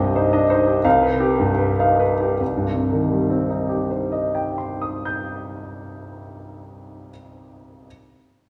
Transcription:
0.00 0.81 C2 medium
0.00 0.25 G2 soft
0.00 0.67 G4 soft
0.00 0.16 C5 medium
0.00 0.33 D#5 medium
0.15 0.43 D#4 soft
0.15 0.43 C5 soft
0.33 0.50 D4 soft
0.33 0.60 D#5 medium
0.50 0.78 D#4 medium
0.50 0.78 C5 medium
0.67 0.85 G4 soft
0.85 2.36 C2 medium
0.85 1.13 F5 medium
1.02 1.32 B4 medium
1.20 1.51 G4 medium
1.39 1.71 G2 medium
1.59 1.91 B4 soft
1.79 2.00 D#4 soft
1.79 2.12 F5 soft
2.00 2.32 B4 soft
2.20 2.41 G4 soft
2.40 7.09 C2 soft
2.57 7.09 G2 soft
2.75 7.10 C3 soft
2.92 7.09 D#3 soft
3.11 7.10 G3 soft
3.30 7.10 C4 soft
3.49 7.10 D#4 soft
3.69 7.09 G4 soft
3.91 7.10 C5 soft
4.12 7.10 D#5 soft
4.35 7.10 G5 soft
4.58 7.10 C6 soft
4.82 7.10 D#6 soft
5.05 7.10 G6 soft

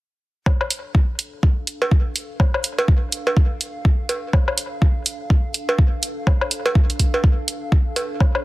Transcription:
0.46 8.45 D4 medium
0.46 kick loud
0.46 low woodblock soft
0.59 8.45 A4 medium
0.59 low woodblock medium
0.70 closed hi-hat medium
0.95 8.45 F5 medium
0.95 kick loud
1.19 closed hi-hat medium
1.43 kick loud
1.67 closed hi-hat medium
1.82 cowbell medium
1.91 kick loud
2.16 closed hi-hat medium
2.40 kick loud
2.40 low woodblock medium
2.54 low woodblock medium
2.64 closed hi-hat medium
2.79 cowbell medium
2.88 kick loud
3.12 closed hi-hat medium
3.27 cowbell medium
3.37 kick loud
3.61 closed hi-hat medium
3.85 kick loud
4.09 closed hi-hat medium
4.09 cowbell medium
4.33 kick loud
4.33 low woodblock medium
4.48 low woodblock medium
4.58 closed hi-hat medium
4.82 kick loud
5.06 closed hi-hat medium
5.30 kick loud
5.54 closed hi-hat medium
5.69 cowbell medium
5.78 kick loud
6.03 closed hi-hat medium
6.27 kick loud
6.27 low woodblock medium
6.41 low woodblock medium
6.51 closed hi-hat medium
6.66 cowbell medium
6.75 kick loud
6.90 closed hi-hat soft
6.99 kick medium
6.99 closed hi-hat medium
7.14 cowbell medium
7.24 kick loud
7.48 closed hi-hat medium
7.72 kick loud
7.96 closed hi-hat medium
7.96 cowbell medium
8.20 kick loud
8.20 low woodblock medium
8.35 low woodblock medium

